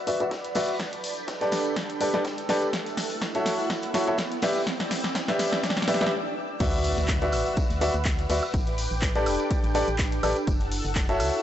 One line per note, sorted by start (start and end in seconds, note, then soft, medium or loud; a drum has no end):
0.00 1.46 E4 medium
0.00 3.41 B4 medium
0.00 1.58 D5 medium
0.00 2.69 D5 medium
0.00 0.78 F#5 medium
0.00 0.80 F#5 medium
0.00 2.69 B5 medium
0.00 0.78 E6 medium
0.00 riser medium
0.07 0.18 F#4 medium
0.07 0.18 B4 medium
0.07 0.18 D5 medium
0.07 0.18 E5 medium
0.07 open hi-hat loud
0.07 tambourine medium
0.20 0.29 F#4 medium
0.20 0.29 B4 medium
0.20 0.29 D5 medium
0.20 0.29 E5 medium
0.20 closed hi-hat soft
0.20 tambourine soft
0.31 kick loud
0.31 snare loud
0.31 closed hi-hat medium
0.31 tambourine soft
0.31 shaker medium
0.44 closed hi-hat medium
0.44 tambourine soft
0.55 0.72 F#4 medium
0.55 0.72 B4 medium
0.55 0.72 D5 medium
0.55 0.72 E5 loud
0.55 snare medium
0.55 open hi-hat medium
0.55 open hi-hat loud
0.55 tambourine loud
0.69 closed hi-hat soft
0.69 tambourine soft
0.79 2.73 D4 medium
0.79 4.39 A5 medium
0.79 2.71 G6 medium
0.79 kick loud
0.79 snare medium
0.79 closed hi-hat medium
0.79 tambourine medium
0.79 shaker medium
0.86 5.31 A4 medium
0.93 closed hi-hat medium
0.93 tambourine soft
1.04 open hi-hat loud
1.04 tambourine medium
1.17 closed hi-hat soft
1.17 tambourine soft
1.28 kick loud
1.28 snare loud
1.28 closed hi-hat medium
1.28 tambourine soft
1.28 shaker medium
1.41 1.98 G4 medium
1.41 1.98 A4 medium
1.41 1.98 B4 medium
1.41 1.98 D5 medium
1.41 snare medium
1.41 closed hi-hat medium
1.41 tambourine soft
1.52 snare medium
1.52 open hi-hat loud
1.52 tambourine medium
1.65 2.73 G5 medium
1.65 tambourine soft
1.76 kick loud
1.76 snare medium
1.76 closed hi-hat medium
1.76 tambourine soft
1.76 shaker medium
1.90 closed hi-hat medium
1.90 tambourine soft
2.01 2.12 G4 medium
2.01 2.12 A4 medium
2.01 2.12 B4 medium
2.01 2.12 D5 medium
2.01 open hi-hat loud
2.01 tambourine medium
2.13 2.23 G4 medium
2.13 2.23 A4 medium
2.13 2.23 B4 medium
2.13 2.23 D5 medium
2.13 snare medium
2.13 closed hi-hat soft
2.13 tambourine soft
2.24 kick loud
2.24 snare loud
2.24 closed hi-hat medium
2.24 tambourine medium
2.24 shaker medium
2.38 closed hi-hat medium
2.38 tambourine soft
2.49 2.66 G4 medium
2.49 2.66 A4 medium
2.49 2.66 B4 medium
2.49 2.66 D5 loud
2.49 snare medium
2.49 open hi-hat loud
2.49 tambourine medium
2.62 closed hi-hat soft
2.62 tambourine soft
2.73 6.12 E4 medium
2.73 4.41 E5 medium
2.73 4.41 F#6 medium
2.73 kick loud
2.73 snare medium
2.73 closed hi-hat medium
2.73 tambourine medium
2.73 shaker medium
2.86 closed hi-hat soft
2.86 closed hi-hat medium
2.86 tambourine soft
2.97 snare medium
2.97 open hi-hat loud
2.97 tambourine loud
3.10 4.43 F#5 medium
3.10 closed hi-hat soft
3.10 tambourine soft
3.21 kick loud
3.21 snare loud
3.21 snare medium
3.21 closed hi-hat medium
3.21 tambourine medium
3.34 3.92 F#4 medium
3.34 3.92 A4 medium
3.34 3.92 C#5 medium
3.34 3.92 E5 medium
3.34 snare soft
3.34 closed hi-hat medium
3.34 tambourine soft
3.46 snare medium
3.46 open hi-hat loud
3.46 tambourine loud
3.59 tambourine soft
3.70 kick loud
3.70 snare medium
3.70 closed hi-hat medium
3.70 tambourine medium
3.82 closed hi-hat soft
3.82 tambourine soft
3.94 4.05 F#4 medium
3.94 4.05 A4 medium
3.94 4.05 C#5 medium
3.94 4.05 E5 medium
3.94 snare medium
3.94 open hi-hat loud
3.94 tambourine loud
4.07 4.17 F#4 medium
4.07 4.17 A4 medium
4.07 4.17 C#5 medium
4.07 4.17 E5 medium
4.07 closed hi-hat soft
4.07 tambourine soft
4.18 kick loud
4.18 snare medium
4.18 snare loud
4.18 closed hi-hat medium
4.18 tambourine medium
4.18 shaker medium
4.32 closed hi-hat medium
4.32 tambourine soft
4.42 4.59 G4 loud
4.42 4.59 B4 medium
4.42 4.59 D5 medium
4.42 6.58 D5 medium
4.42 4.59 E5 loud
4.42 6.58 G5 medium
4.42 6.58 E6 medium
4.42 snare medium
4.42 open hi-hat medium
4.42 open hi-hat loud
4.42 tambourine loud
4.55 closed hi-hat soft
4.55 tambourine soft
4.67 kick loud
4.67 snare medium
4.67 closed hi-hat medium
4.67 tambourine medium
4.67 shaker medium
4.80 snare medium
4.80 closed hi-hat medium
4.80 tambourine soft
4.91 6.12 D5 medium
4.91 snare loud
4.91 open hi-hat loud
4.91 tambourine medium
5.04 snare medium
5.04 tambourine soft
5.13 6.12 G5 medium
5.13 kick loud
5.13 snare loud
5.13 closed hi-hat medium
5.13 tambourine medium
5.28 5.85 G4 medium
5.28 5.85 B4 medium
5.28 5.85 D5 medium
5.28 5.85 E5 medium
5.28 snare medium
5.28 closed hi-hat medium
5.28 tambourine soft
5.39 snare loud
5.39 open hi-hat loud
5.39 tambourine loud
5.53 snare medium
5.53 closed hi-hat soft
5.53 tambourine soft
5.63 kick loud
5.63 snare loud
5.63 closed hi-hat medium
5.63 tambourine medium
5.70 snare medium
5.77 snare medium
5.77 closed hi-hat medium
5.77 tambourine soft
5.82 snare medium
5.88 5.99 G4 medium
5.88 5.99 B4 medium
5.88 5.99 D5 medium
5.88 5.99 E5 medium
5.88 snare loud
5.88 open hi-hat loud
5.88 tambourine medium
5.94 snare loud
6.01 6.10 G4 medium
6.01 6.10 B4 medium
6.01 6.10 D5 medium
6.01 6.10 E5 medium
6.01 snare medium
6.01 tambourine soft
6.06 snare medium
6.60 6.94 D2 loud
6.60 7.17 F#4 loud
6.60 7.17 B4 medium
6.60 10.44 B4 medium
6.60 7.17 D5 medium
6.60 7.17 E5 loud
6.60 8.52 F#5 medium
6.60 8.52 E6 medium
6.60 kick loud
6.60 closed hi-hat medium
6.60 crash loud
6.60 ride medium
6.60 tambourine medium
6.60 impact medium
6.60 shaker medium
6.73 closed hi-hat medium
6.73 closed hi-hat soft
6.73 tambourine soft
6.84 open hi-hat loud
6.84 tambourine medium
6.98 7.34 D2 medium
6.98 closed hi-hat soft
6.98 tambourine soft
7.08 kick loud
7.08 snare loud
7.08 clap loud
7.08 closed hi-hat medium
7.08 ride medium
7.08 tambourine medium
7.16 11.16 B4 medium
7.21 7.79 F#4 medium
7.21 7.79 B4 medium
7.21 7.79 D5 medium
7.21 7.79 E5 medium
7.21 snare soft
7.21 closed hi-hat medium
7.21 tambourine soft
7.32 7.44 A1 loud
7.32 open hi-hat loud
7.32 tambourine medium
7.32 high woodblock medium
7.46 8.54 F#5 medium
7.46 tambourine soft
7.57 kick loud
7.57 closed hi-hat medium
7.57 ride medium
7.57 tambourine medium
7.57 shaker medium
7.70 7.90 D2 medium
7.70 closed hi-hat medium
7.70 closed hi-hat soft
7.70 tambourine soft
7.81 7.92 F#4 loud
7.81 7.92 B4 medium
7.81 7.92 D5 medium
7.81 7.92 E5 loud
7.81 open hi-hat loud
7.81 tambourine medium
7.94 8.27 D2 medium
7.94 closed hi-hat soft
7.94 tambourine soft
8.05 kick loud
8.05 snare loud
8.05 clap loud
8.05 closed hi-hat medium
8.05 ride medium
8.05 tambourine medium
8.19 closed hi-hat medium
8.19 tambourine soft
8.30 8.41 D2 loud
8.30 8.41 F#4 medium
8.30 8.41 B4 medium
8.30 8.41 D5 medium
8.30 8.41 E5 medium
8.30 open hi-hat loud
8.30 open hi-hat medium
8.30 tambourine loud
8.42 closed hi-hat soft
8.42 tambourine soft
8.42 high woodblock medium
8.54 8.88 A1 loud
8.54 10.47 D4 medium
8.54 10.45 G5 medium
8.54 10.45 D6 medium
8.54 kick loud
8.54 closed hi-hat medium
8.54 ride medium
8.54 tambourine medium
8.54 shaker medium
8.67 closed hi-hat medium
8.67 tambourine soft
8.78 10.47 G5 medium
8.78 open hi-hat loud
8.78 tambourine loud
8.91 9.28 A1 medium
8.91 tambourine soft
9.02 kick loud
9.02 snare loud
9.02 clap loud
9.02 closed hi-hat medium
9.02 ride medium
9.02 tambourine medium
9.15 9.72 G4 medium
9.15 9.72 A4 medium
9.15 9.72 B4 medium
9.15 9.72 D5 medium
9.15 snare medium
9.15 closed hi-hat medium
9.15 tambourine soft
9.26 9.37 E1 loud
9.26 open hi-hat loud
9.26 tambourine loud
9.26 high woodblock medium
9.40 closed hi-hat soft
9.40 tambourine soft
9.51 kick loud
9.51 closed hi-hat medium
9.51 ride medium
9.51 tambourine medium
9.51 shaker medium
9.64 9.83 A1 medium
9.64 closed hi-hat medium
9.64 tambourine soft
9.75 9.86 G4 loud
9.75 9.86 A4 medium
9.75 9.86 B4 medium
9.75 9.86 D5 loud
9.75 open hi-hat loud
9.75 tambourine loud
9.88 10.20 A1 medium
9.88 closed hi-hat soft
9.88 tambourine soft
9.98 kick loud
9.98 snare loud
9.98 clap loud
9.98 closed hi-hat medium
9.98 ride medium
9.98 tambourine medium
10.12 closed hi-hat medium
10.12 tambourine soft
10.23 10.34 A1 loud
10.23 10.34 G4 medium
10.23 10.34 A4 medium
10.23 10.34 B4 medium
10.23 10.34 D5 medium
10.23 open hi-hat loud
10.23 tambourine loud
10.23 high woodblock medium
10.23 shaker medium
10.36 closed hi-hat soft
10.36 tambourine soft
10.47 10.81 F#1 loud
10.47 11.42 E4 medium
10.47 11.42 A4 medium
10.47 11.42 F#5 medium
10.47 11.42 E6 medium
10.47 kick loud
10.47 closed hi-hat medium
10.47 ride medium
10.47 tambourine medium
10.61 closed hi-hat medium
10.61 closed hi-hat soft
10.61 tambourine soft
10.72 open hi-hat loud
10.72 tambourine medium
10.84 11.21 F#1 medium
10.84 closed hi-hat soft
10.84 tambourine soft
10.95 11.42 F#5 medium
10.95 kick loud
10.95 snare loud
10.95 clap loud
10.95 closed hi-hat medium
10.95 ride medium
10.95 tambourine medium
11.01 11.42 A4 medium
11.09 11.42 F#4 medium
11.09 11.42 A4 medium
11.09 11.42 C#5 medium
11.09 11.42 E5 loud
11.09 snare soft
11.09 closed hi-hat medium
11.09 tambourine soft
11.20 11.31 C#2 loud
11.20 open hi-hat loud
11.20 tambourine loud
11.20 high woodblock medium
11.33 tambourine soft